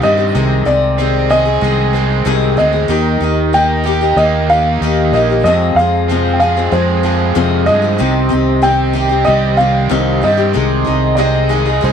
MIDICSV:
0, 0, Header, 1, 7, 480
1, 0, Start_track
1, 0, Key_signature, -4, "minor"
1, 0, Tempo, 637620
1, 262, Time_signature, 4, 2, 24, 8
1, 8976, End_track
2, 0, Start_track
2, 0, Title_t, "Grand piano"
2, 0, Program_c, 0, 0
2, 26, Note_on_c, 0, 75, 96
2, 499, Note_on_c, 0, 74, 82
2, 519, Note_off_c, 0, 75, 0
2, 951, Note_off_c, 0, 74, 0
2, 983, Note_on_c, 0, 75, 92
2, 1929, Note_off_c, 0, 75, 0
2, 1940, Note_on_c, 0, 75, 77
2, 2666, Note_on_c, 0, 79, 87
2, 2684, Note_off_c, 0, 75, 0
2, 3115, Note_off_c, 0, 79, 0
2, 3140, Note_on_c, 0, 75, 85
2, 3365, Note_off_c, 0, 75, 0
2, 3386, Note_on_c, 0, 77, 90
2, 3865, Note_on_c, 0, 75, 72
2, 3880, Note_off_c, 0, 77, 0
2, 4085, Note_off_c, 0, 75, 0
2, 4096, Note_on_c, 0, 75, 89
2, 4339, Note_on_c, 0, 77, 99
2, 4348, Note_off_c, 0, 75, 0
2, 4768, Note_on_c, 0, 79, 56
2, 4782, Note_off_c, 0, 77, 0
2, 4815, Note_on_c, 0, 77, 82
2, 4823, Note_off_c, 0, 79, 0
2, 5063, Note_on_c, 0, 72, 70
2, 5068, Note_off_c, 0, 77, 0
2, 5514, Note_off_c, 0, 72, 0
2, 5769, Note_on_c, 0, 75, 86
2, 6494, Note_on_c, 0, 79, 82
2, 6519, Note_off_c, 0, 75, 0
2, 6962, Note_on_c, 0, 75, 85
2, 6995, Note_off_c, 0, 79, 0
2, 7196, Note_off_c, 0, 75, 0
2, 7206, Note_on_c, 0, 77, 75
2, 7706, Note_on_c, 0, 75, 76
2, 7711, Note_off_c, 0, 77, 0
2, 8976, Note_off_c, 0, 75, 0
2, 8976, End_track
3, 0, Start_track
3, 0, Title_t, "Upright piano"
3, 0, Program_c, 1, 0
3, 8395, Note_on_c, 1, 74, 63
3, 8424, Note_off_c, 1, 74, 0
3, 8427, Note_on_c, 1, 75, 90
3, 8892, Note_off_c, 1, 75, 0
3, 8914, Note_on_c, 1, 72, 70
3, 8976, Note_off_c, 1, 72, 0
3, 8976, End_track
4, 0, Start_track
4, 0, Title_t, "Tonewheel organ"
4, 0, Program_c, 2, 16
4, 2179, Note_on_c, 2, 67, 60
4, 2180, Note_on_c, 2, 75, 56
4, 2181, Note_on_c, 2, 82, 67
4, 2185, Note_on_c, 2, 70, 57
4, 4084, Note_off_c, 2, 67, 0
4, 4084, Note_off_c, 2, 75, 0
4, 4085, Note_off_c, 2, 82, 0
4, 4087, Note_off_c, 2, 70, 0
4, 4103, Note_on_c, 2, 77, 55
4, 4105, Note_on_c, 2, 84, 66
4, 4109, Note_on_c, 2, 68, 60
4, 4112, Note_on_c, 2, 72, 59
4, 6006, Note_off_c, 2, 77, 0
4, 6008, Note_on_c, 2, 67, 61
4, 6009, Note_off_c, 2, 68, 0
4, 6013, Note_on_c, 2, 75, 59
4, 7918, Note_off_c, 2, 67, 0
4, 7921, Note_off_c, 2, 75, 0
4, 7947, Note_on_c, 2, 75, 56
4, 7951, Note_on_c, 2, 68, 59
4, 8976, Note_off_c, 2, 68, 0
4, 8976, Note_off_c, 2, 72, 0
4, 8976, Note_off_c, 2, 75, 0
4, 8976, Note_off_c, 2, 84, 0
4, 8976, End_track
5, 0, Start_track
5, 0, Title_t, "Steel-string acoustic guitar"
5, 0, Program_c, 3, 25
5, 14, Note_on_c, 3, 51, 50
5, 24, Note_on_c, 3, 60, 59
5, 31, Note_on_c, 3, 63, 52
5, 39, Note_on_c, 3, 67, 53
5, 122, Note_off_c, 3, 67, 0
5, 131, Note_on_c, 3, 67, 47
5, 136, Note_off_c, 3, 63, 0
5, 138, Note_off_c, 3, 51, 0
5, 143, Note_off_c, 3, 60, 0
5, 145, Note_on_c, 3, 63, 39
5, 154, Note_on_c, 3, 60, 36
5, 257, Note_off_c, 3, 67, 0
5, 259, Note_off_c, 3, 60, 0
5, 261, Note_on_c, 3, 48, 66
5, 263, Note_off_c, 3, 63, 0
5, 264, Note_on_c, 3, 51, 75
5, 264, Note_on_c, 3, 56, 68
5, 268, Note_on_c, 3, 60, 74
5, 276, Note_on_c, 3, 68, 76
5, 484, Note_off_c, 3, 51, 0
5, 491, Note_off_c, 3, 56, 0
5, 493, Note_on_c, 3, 51, 48
5, 498, Note_off_c, 3, 60, 0
5, 500, Note_on_c, 3, 56, 56
5, 502, Note_off_c, 3, 48, 0
5, 506, Note_off_c, 3, 68, 0
5, 507, Note_on_c, 3, 60, 64
5, 515, Note_on_c, 3, 68, 60
5, 735, Note_off_c, 3, 51, 0
5, 738, Note_on_c, 3, 48, 56
5, 741, Note_off_c, 3, 56, 0
5, 744, Note_on_c, 3, 51, 57
5, 745, Note_off_c, 3, 60, 0
5, 745, Note_off_c, 3, 68, 0
5, 750, Note_on_c, 3, 56, 64
5, 753, Note_on_c, 3, 60, 64
5, 754, Note_on_c, 3, 68, 68
5, 967, Note_off_c, 3, 51, 0
5, 975, Note_off_c, 3, 56, 0
5, 976, Note_on_c, 3, 51, 54
5, 981, Note_off_c, 3, 48, 0
5, 982, Note_off_c, 3, 60, 0
5, 984, Note_on_c, 3, 56, 57
5, 989, Note_off_c, 3, 68, 0
5, 991, Note_on_c, 3, 60, 57
5, 1003, Note_on_c, 3, 68, 68
5, 1084, Note_off_c, 3, 68, 0
5, 1093, Note_on_c, 3, 68, 46
5, 1094, Note_off_c, 3, 60, 0
5, 1099, Note_off_c, 3, 51, 0
5, 1103, Note_off_c, 3, 56, 0
5, 1103, Note_on_c, 3, 60, 42
5, 1113, Note_on_c, 3, 56, 36
5, 1214, Note_on_c, 3, 51, 54
5, 1217, Note_off_c, 3, 56, 0
5, 1218, Note_off_c, 3, 68, 0
5, 1223, Note_off_c, 3, 60, 0
5, 1226, Note_on_c, 3, 56, 55
5, 1235, Note_on_c, 3, 60, 64
5, 1238, Note_on_c, 3, 68, 62
5, 1445, Note_off_c, 3, 51, 0
5, 1454, Note_on_c, 3, 51, 51
5, 1456, Note_off_c, 3, 56, 0
5, 1464, Note_off_c, 3, 60, 0
5, 1465, Note_on_c, 3, 56, 51
5, 1471, Note_off_c, 3, 68, 0
5, 1473, Note_on_c, 3, 60, 50
5, 1478, Note_on_c, 3, 68, 59
5, 1691, Note_off_c, 3, 51, 0
5, 1693, Note_on_c, 3, 48, 74
5, 1696, Note_off_c, 3, 56, 0
5, 1699, Note_off_c, 3, 60, 0
5, 1700, Note_on_c, 3, 51, 68
5, 1703, Note_off_c, 3, 68, 0
5, 1705, Note_on_c, 3, 56, 81
5, 1708, Note_on_c, 3, 60, 80
5, 1712, Note_on_c, 3, 68, 85
5, 1925, Note_off_c, 3, 51, 0
5, 1934, Note_on_c, 3, 51, 52
5, 1937, Note_off_c, 3, 56, 0
5, 1938, Note_off_c, 3, 48, 0
5, 1943, Note_off_c, 3, 60, 0
5, 1946, Note_on_c, 3, 56, 50
5, 1948, Note_off_c, 3, 68, 0
5, 1952, Note_on_c, 3, 60, 60
5, 1958, Note_on_c, 3, 68, 57
5, 2044, Note_off_c, 3, 68, 0
5, 2053, Note_on_c, 3, 68, 42
5, 2056, Note_off_c, 3, 60, 0
5, 2059, Note_off_c, 3, 51, 0
5, 2065, Note_off_c, 3, 56, 0
5, 2065, Note_on_c, 3, 60, 37
5, 2075, Note_on_c, 3, 56, 32
5, 2169, Note_on_c, 3, 51, 71
5, 2175, Note_off_c, 3, 56, 0
5, 2178, Note_on_c, 3, 58, 70
5, 2179, Note_off_c, 3, 60, 0
5, 2179, Note_off_c, 3, 68, 0
5, 2182, Note_on_c, 3, 63, 67
5, 2184, Note_on_c, 3, 67, 75
5, 2404, Note_off_c, 3, 51, 0
5, 2413, Note_on_c, 3, 51, 56
5, 2415, Note_off_c, 3, 58, 0
5, 2423, Note_off_c, 3, 63, 0
5, 2424, Note_off_c, 3, 67, 0
5, 2424, Note_on_c, 3, 58, 49
5, 2433, Note_on_c, 3, 63, 59
5, 2436, Note_on_c, 3, 67, 57
5, 2648, Note_off_c, 3, 51, 0
5, 2657, Note_off_c, 3, 58, 0
5, 2657, Note_on_c, 3, 51, 60
5, 2660, Note_off_c, 3, 63, 0
5, 2663, Note_off_c, 3, 67, 0
5, 2666, Note_on_c, 3, 58, 70
5, 2669, Note_on_c, 3, 63, 63
5, 2672, Note_on_c, 3, 67, 65
5, 2879, Note_off_c, 3, 51, 0
5, 2888, Note_on_c, 3, 51, 56
5, 2893, Note_off_c, 3, 58, 0
5, 2898, Note_off_c, 3, 63, 0
5, 2902, Note_on_c, 3, 58, 56
5, 2905, Note_off_c, 3, 67, 0
5, 2907, Note_on_c, 3, 63, 52
5, 2914, Note_on_c, 3, 67, 67
5, 3009, Note_off_c, 3, 67, 0
5, 3016, Note_off_c, 3, 51, 0
5, 3018, Note_on_c, 3, 67, 47
5, 3022, Note_off_c, 3, 63, 0
5, 3023, Note_off_c, 3, 58, 0
5, 3032, Note_on_c, 3, 63, 46
5, 3043, Note_on_c, 3, 58, 38
5, 3136, Note_off_c, 3, 58, 0
5, 3141, Note_off_c, 3, 67, 0
5, 3141, Note_on_c, 3, 51, 54
5, 3145, Note_off_c, 3, 63, 0
5, 3145, Note_on_c, 3, 58, 63
5, 3154, Note_on_c, 3, 63, 55
5, 3164, Note_on_c, 3, 67, 59
5, 3375, Note_off_c, 3, 51, 0
5, 3381, Note_off_c, 3, 58, 0
5, 3384, Note_on_c, 3, 51, 54
5, 3389, Note_off_c, 3, 63, 0
5, 3390, Note_on_c, 3, 58, 46
5, 3394, Note_off_c, 3, 67, 0
5, 3397, Note_on_c, 3, 63, 49
5, 3409, Note_on_c, 3, 67, 59
5, 3620, Note_off_c, 3, 51, 0
5, 3628, Note_off_c, 3, 58, 0
5, 3629, Note_on_c, 3, 51, 70
5, 3631, Note_off_c, 3, 63, 0
5, 3636, Note_on_c, 3, 58, 71
5, 3637, Note_off_c, 3, 67, 0
5, 3639, Note_on_c, 3, 63, 69
5, 3645, Note_on_c, 3, 67, 77
5, 3856, Note_off_c, 3, 51, 0
5, 3865, Note_off_c, 3, 58, 0
5, 3865, Note_on_c, 3, 51, 51
5, 3872, Note_off_c, 3, 63, 0
5, 3874, Note_on_c, 3, 58, 51
5, 3875, Note_off_c, 3, 67, 0
5, 3883, Note_on_c, 3, 63, 57
5, 3891, Note_on_c, 3, 67, 57
5, 3978, Note_off_c, 3, 67, 0
5, 3985, Note_off_c, 3, 51, 0
5, 3987, Note_on_c, 3, 67, 41
5, 3990, Note_off_c, 3, 58, 0
5, 3990, Note_off_c, 3, 63, 0
5, 3999, Note_on_c, 3, 63, 44
5, 4009, Note_on_c, 3, 58, 35
5, 4106, Note_off_c, 3, 67, 0
5, 4106, Note_on_c, 3, 41, 68
5, 4108, Note_on_c, 3, 48, 74
5, 4111, Note_off_c, 3, 58, 0
5, 4112, Note_off_c, 3, 63, 0
5, 4114, Note_on_c, 3, 53, 69
5, 4114, Note_on_c, 3, 56, 77
5, 4121, Note_on_c, 3, 60, 84
5, 4122, Note_on_c, 3, 68, 72
5, 4337, Note_off_c, 3, 53, 0
5, 4346, Note_off_c, 3, 41, 0
5, 4347, Note_off_c, 3, 48, 0
5, 4347, Note_on_c, 3, 53, 49
5, 4350, Note_off_c, 3, 56, 0
5, 4353, Note_off_c, 3, 60, 0
5, 4354, Note_off_c, 3, 68, 0
5, 4358, Note_on_c, 3, 56, 58
5, 4363, Note_on_c, 3, 60, 58
5, 4372, Note_on_c, 3, 68, 58
5, 4586, Note_off_c, 3, 53, 0
5, 4588, Note_on_c, 3, 41, 69
5, 4592, Note_off_c, 3, 56, 0
5, 4593, Note_off_c, 3, 60, 0
5, 4593, Note_on_c, 3, 48, 60
5, 4595, Note_on_c, 3, 53, 68
5, 4596, Note_off_c, 3, 68, 0
5, 4600, Note_on_c, 3, 56, 62
5, 4602, Note_on_c, 3, 60, 65
5, 4605, Note_on_c, 3, 68, 74
5, 4809, Note_off_c, 3, 53, 0
5, 4818, Note_off_c, 3, 56, 0
5, 4818, Note_on_c, 3, 53, 58
5, 4824, Note_off_c, 3, 60, 0
5, 4827, Note_off_c, 3, 41, 0
5, 4827, Note_on_c, 3, 56, 64
5, 4829, Note_off_c, 3, 48, 0
5, 4833, Note_on_c, 3, 60, 57
5, 4834, Note_off_c, 3, 68, 0
5, 4843, Note_on_c, 3, 68, 65
5, 4933, Note_off_c, 3, 68, 0
5, 4939, Note_off_c, 3, 60, 0
5, 4942, Note_off_c, 3, 53, 0
5, 4942, Note_on_c, 3, 68, 46
5, 4946, Note_off_c, 3, 56, 0
5, 4948, Note_on_c, 3, 60, 48
5, 4958, Note_on_c, 3, 56, 44
5, 4961, Note_on_c, 3, 53, 43
5, 5047, Note_off_c, 3, 53, 0
5, 5051, Note_off_c, 3, 56, 0
5, 5056, Note_on_c, 3, 53, 52
5, 5060, Note_off_c, 3, 60, 0
5, 5060, Note_on_c, 3, 56, 56
5, 5064, Note_off_c, 3, 68, 0
5, 5069, Note_on_c, 3, 60, 68
5, 5079, Note_on_c, 3, 68, 62
5, 5285, Note_off_c, 3, 53, 0
5, 5294, Note_off_c, 3, 56, 0
5, 5294, Note_on_c, 3, 53, 60
5, 5301, Note_off_c, 3, 60, 0
5, 5303, Note_on_c, 3, 56, 54
5, 5306, Note_off_c, 3, 68, 0
5, 5310, Note_on_c, 3, 60, 49
5, 5315, Note_on_c, 3, 68, 59
5, 5529, Note_off_c, 3, 53, 0
5, 5532, Note_off_c, 3, 56, 0
5, 5532, Note_on_c, 3, 41, 75
5, 5535, Note_on_c, 3, 48, 78
5, 5536, Note_off_c, 3, 68, 0
5, 5537, Note_off_c, 3, 60, 0
5, 5538, Note_on_c, 3, 53, 71
5, 5541, Note_on_c, 3, 56, 70
5, 5545, Note_on_c, 3, 68, 84
5, 5546, Note_on_c, 3, 60, 82
5, 5758, Note_off_c, 3, 53, 0
5, 5763, Note_off_c, 3, 56, 0
5, 5767, Note_on_c, 3, 53, 54
5, 5772, Note_on_c, 3, 56, 57
5, 5774, Note_off_c, 3, 60, 0
5, 5779, Note_off_c, 3, 41, 0
5, 5780, Note_off_c, 3, 68, 0
5, 5781, Note_off_c, 3, 48, 0
5, 5783, Note_on_c, 3, 60, 49
5, 5789, Note_on_c, 3, 68, 61
5, 5877, Note_off_c, 3, 68, 0
5, 5883, Note_off_c, 3, 60, 0
5, 5886, Note_on_c, 3, 68, 47
5, 5892, Note_on_c, 3, 60, 46
5, 5894, Note_off_c, 3, 56, 0
5, 5897, Note_off_c, 3, 53, 0
5, 5903, Note_on_c, 3, 56, 41
5, 5909, Note_on_c, 3, 53, 37
5, 6009, Note_off_c, 3, 60, 0
5, 6009, Note_on_c, 3, 48, 62
5, 6010, Note_off_c, 3, 53, 0
5, 6013, Note_on_c, 3, 51, 80
5, 6015, Note_off_c, 3, 56, 0
5, 6016, Note_off_c, 3, 68, 0
5, 6018, Note_on_c, 3, 60, 73
5, 6023, Note_on_c, 3, 63, 75
5, 6023, Note_on_c, 3, 67, 81
5, 6232, Note_off_c, 3, 51, 0
5, 6241, Note_off_c, 3, 60, 0
5, 6241, Note_on_c, 3, 51, 63
5, 6250, Note_on_c, 3, 60, 58
5, 6251, Note_off_c, 3, 63, 0
5, 6257, Note_off_c, 3, 48, 0
5, 6260, Note_off_c, 3, 67, 0
5, 6260, Note_on_c, 3, 63, 62
5, 6269, Note_on_c, 3, 67, 66
5, 6483, Note_off_c, 3, 51, 0
5, 6487, Note_on_c, 3, 48, 67
5, 6489, Note_off_c, 3, 60, 0
5, 6492, Note_off_c, 3, 63, 0
5, 6492, Note_on_c, 3, 51, 64
5, 6496, Note_off_c, 3, 67, 0
5, 6498, Note_on_c, 3, 60, 73
5, 6501, Note_on_c, 3, 63, 68
5, 6505, Note_on_c, 3, 67, 72
5, 6716, Note_off_c, 3, 51, 0
5, 6725, Note_on_c, 3, 51, 64
5, 6728, Note_off_c, 3, 60, 0
5, 6731, Note_off_c, 3, 63, 0
5, 6737, Note_off_c, 3, 48, 0
5, 6737, Note_on_c, 3, 60, 60
5, 6739, Note_off_c, 3, 67, 0
5, 6740, Note_on_c, 3, 63, 65
5, 6748, Note_on_c, 3, 67, 66
5, 6836, Note_off_c, 3, 67, 0
5, 6845, Note_on_c, 3, 67, 50
5, 6849, Note_off_c, 3, 63, 0
5, 6856, Note_off_c, 3, 51, 0
5, 6858, Note_on_c, 3, 63, 46
5, 6862, Note_off_c, 3, 60, 0
5, 6870, Note_on_c, 3, 60, 41
5, 6959, Note_on_c, 3, 51, 56
5, 6960, Note_off_c, 3, 60, 0
5, 6969, Note_off_c, 3, 63, 0
5, 6969, Note_on_c, 3, 60, 54
5, 6976, Note_off_c, 3, 67, 0
5, 6978, Note_on_c, 3, 63, 59
5, 6985, Note_on_c, 3, 67, 61
5, 7197, Note_off_c, 3, 51, 0
5, 7206, Note_on_c, 3, 51, 48
5, 7208, Note_off_c, 3, 60, 0
5, 7217, Note_on_c, 3, 60, 58
5, 7220, Note_off_c, 3, 63, 0
5, 7224, Note_off_c, 3, 67, 0
5, 7229, Note_on_c, 3, 63, 60
5, 7233, Note_on_c, 3, 67, 60
5, 7441, Note_off_c, 3, 51, 0
5, 7447, Note_off_c, 3, 60, 0
5, 7448, Note_on_c, 3, 48, 66
5, 7450, Note_on_c, 3, 51, 78
5, 7452, Note_off_c, 3, 63, 0
5, 7454, Note_off_c, 3, 67, 0
5, 7456, Note_on_c, 3, 60, 72
5, 7461, Note_on_c, 3, 63, 81
5, 7463, Note_on_c, 3, 67, 79
5, 7681, Note_off_c, 3, 51, 0
5, 7690, Note_on_c, 3, 51, 46
5, 7691, Note_off_c, 3, 60, 0
5, 7697, Note_off_c, 3, 48, 0
5, 7697, Note_off_c, 3, 63, 0
5, 7700, Note_on_c, 3, 60, 54
5, 7705, Note_off_c, 3, 67, 0
5, 7706, Note_on_c, 3, 63, 50
5, 7715, Note_on_c, 3, 67, 50
5, 7799, Note_off_c, 3, 67, 0
5, 7808, Note_on_c, 3, 67, 54
5, 7810, Note_off_c, 3, 63, 0
5, 7818, Note_off_c, 3, 51, 0
5, 7819, Note_on_c, 3, 63, 43
5, 7820, Note_off_c, 3, 60, 0
5, 7829, Note_on_c, 3, 60, 34
5, 7928, Note_on_c, 3, 48, 66
5, 7933, Note_off_c, 3, 60, 0
5, 7934, Note_off_c, 3, 63, 0
5, 7934, Note_on_c, 3, 51, 65
5, 7936, Note_on_c, 3, 56, 78
5, 7937, Note_off_c, 3, 67, 0
5, 7943, Note_on_c, 3, 63, 76
5, 7945, Note_on_c, 3, 68, 64
5, 8156, Note_off_c, 3, 51, 0
5, 8165, Note_on_c, 3, 51, 53
5, 8168, Note_off_c, 3, 56, 0
5, 8175, Note_off_c, 3, 63, 0
5, 8177, Note_off_c, 3, 48, 0
5, 8177, Note_on_c, 3, 56, 49
5, 8181, Note_off_c, 3, 68, 0
5, 8184, Note_on_c, 3, 63, 65
5, 8190, Note_on_c, 3, 68, 56
5, 8405, Note_off_c, 3, 51, 0
5, 8407, Note_on_c, 3, 48, 65
5, 8409, Note_off_c, 3, 56, 0
5, 8412, Note_off_c, 3, 63, 0
5, 8413, Note_off_c, 3, 68, 0
5, 8414, Note_on_c, 3, 51, 66
5, 8418, Note_on_c, 3, 56, 85
5, 8421, Note_on_c, 3, 63, 79
5, 8422, Note_on_c, 3, 68, 77
5, 8642, Note_off_c, 3, 51, 0
5, 8651, Note_on_c, 3, 51, 73
5, 8652, Note_off_c, 3, 56, 0
5, 8657, Note_off_c, 3, 48, 0
5, 8659, Note_off_c, 3, 63, 0
5, 8661, Note_on_c, 3, 56, 73
5, 8664, Note_off_c, 3, 68, 0
5, 8668, Note_on_c, 3, 63, 70
5, 8675, Note_on_c, 3, 68, 71
5, 8765, Note_off_c, 3, 68, 0
5, 8774, Note_on_c, 3, 68, 54
5, 8778, Note_off_c, 3, 51, 0
5, 8778, Note_off_c, 3, 63, 0
5, 8784, Note_off_c, 3, 56, 0
5, 8787, Note_on_c, 3, 63, 47
5, 8800, Note_on_c, 3, 56, 46
5, 8890, Note_off_c, 3, 56, 0
5, 8890, Note_on_c, 3, 51, 63
5, 8898, Note_off_c, 3, 63, 0
5, 8899, Note_on_c, 3, 56, 59
5, 8900, Note_off_c, 3, 68, 0
5, 8907, Note_on_c, 3, 63, 68
5, 8915, Note_on_c, 3, 68, 70
5, 8976, Note_off_c, 3, 51, 0
5, 8976, Note_off_c, 3, 56, 0
5, 8976, Note_off_c, 3, 63, 0
5, 8976, Note_off_c, 3, 68, 0
5, 8976, End_track
6, 0, Start_track
6, 0, Title_t, "Overdriven electric guitar"
6, 0, Program_c, 4, 29
6, 0, Note_on_c, 4, 51, 58
6, 0, Note_on_c, 4, 60, 52
6, 0, Note_on_c, 4, 67, 75
6, 24, Note_on_c, 4, 55, 58
6, 261, Note_off_c, 4, 51, 0
6, 263, Note_off_c, 4, 55, 0
6, 264, Note_off_c, 4, 60, 0
6, 265, Note_off_c, 4, 67, 0
6, 6977, Note_on_c, 4, 55, 74
6, 7698, Note_off_c, 4, 55, 0
6, 7707, Note_on_c, 4, 55, 69
6, 7947, Note_off_c, 4, 55, 0
6, 8423, Note_on_c, 4, 60, 56
6, 8976, Note_off_c, 4, 60, 0
6, 8976, End_track
7, 0, Start_track
7, 0, Title_t, "Fingered electric bass"
7, 0, Program_c, 5, 33
7, 27, Note_on_c, 5, 43, 76
7, 250, Note_off_c, 5, 43, 0
7, 264, Note_on_c, 5, 36, 106
7, 489, Note_off_c, 5, 36, 0
7, 496, Note_on_c, 5, 36, 70
7, 1190, Note_off_c, 5, 36, 0
7, 1219, Note_on_c, 5, 36, 95
7, 1672, Note_off_c, 5, 36, 0
7, 1698, Note_on_c, 5, 36, 91
7, 1926, Note_off_c, 5, 36, 0
7, 1934, Note_on_c, 5, 38, 70
7, 2164, Note_off_c, 5, 38, 0
7, 2175, Note_on_c, 5, 39, 94
7, 2405, Note_off_c, 5, 39, 0
7, 2412, Note_on_c, 5, 39, 77
7, 3108, Note_off_c, 5, 39, 0
7, 3134, Note_on_c, 5, 39, 93
7, 3590, Note_off_c, 5, 39, 0
7, 3621, Note_on_c, 5, 39, 88
7, 3848, Note_off_c, 5, 39, 0
7, 3854, Note_on_c, 5, 34, 70
7, 4084, Note_off_c, 5, 34, 0
7, 4091, Note_on_c, 5, 41, 98
7, 4323, Note_off_c, 5, 41, 0
7, 4327, Note_on_c, 5, 41, 74
7, 5026, Note_off_c, 5, 41, 0
7, 5059, Note_on_c, 5, 41, 98
7, 5513, Note_off_c, 5, 41, 0
7, 5541, Note_on_c, 5, 41, 91
7, 5768, Note_off_c, 5, 41, 0
7, 5783, Note_on_c, 5, 43, 68
7, 6010, Note_off_c, 5, 43, 0
7, 6027, Note_on_c, 5, 36, 110
7, 6252, Note_off_c, 5, 36, 0
7, 6271, Note_on_c, 5, 36, 81
7, 6959, Note_off_c, 5, 36, 0
7, 6985, Note_on_c, 5, 36, 98
7, 7436, Note_off_c, 5, 36, 0
7, 7460, Note_on_c, 5, 36, 89
7, 7688, Note_off_c, 5, 36, 0
7, 7702, Note_on_c, 5, 43, 72
7, 7930, Note_off_c, 5, 43, 0
7, 7949, Note_on_c, 5, 36, 98
7, 8173, Note_off_c, 5, 36, 0
7, 8189, Note_on_c, 5, 36, 72
7, 8877, Note_off_c, 5, 36, 0
7, 8910, Note_on_c, 5, 36, 100
7, 8976, Note_off_c, 5, 36, 0
7, 8976, End_track
0, 0, End_of_file